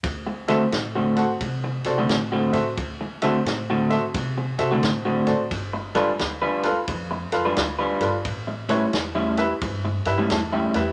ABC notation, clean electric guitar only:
X:1
M:4/4
L:1/16
Q:"Swing" 1/4=88
K:Dmix
V:1 name="Clean electric guitar"
z2 [D,A,CF] z2 [D,A,CF] z4 z [D,A,CF] z [D,A,CF] z2 | z2 [D,A,CF] z2 [D,A,CF] z4 z [D,A,CF] z [D,A,CF] z2 | z2 [G,D=FB] z2 [G,DFB] z4 z [G,DFB] z [G,DFB] z2 | z2 [A,,G,^CE] z2 [A,,G,CE] z4 z [A,,G,CE] z [A,,G,CE] z2 |]